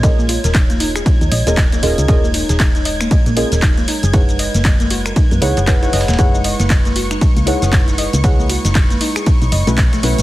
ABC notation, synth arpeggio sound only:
X:1
M:4/4
L:1/16
Q:"Swing 16ths" 1/4=117
K:Gbmix
V:1 name="Synth arpeggio sound"
e B, =F B E B, E A E E e B, e B, F B | E B, E A E E e B, e B, =F B E B, E A | E E e B, e B, G B E B, E A E E e B, | E E e B, e B, G E E B, E A E E e B, |
e B, G E E B, E A E E e =A, e A, ^F E |]